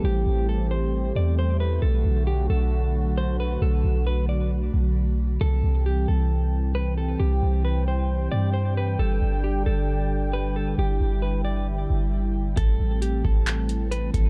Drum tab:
HH |--------|--------|--------|--------|
CP |--------|--------|--------|--------|
BD |--------|--------|--------|--------|

HH |--------|--------|--------|x-x-xxxx|
CP |--------|--------|--------|----x---|
BD |--------|--------|--------|o--o---o|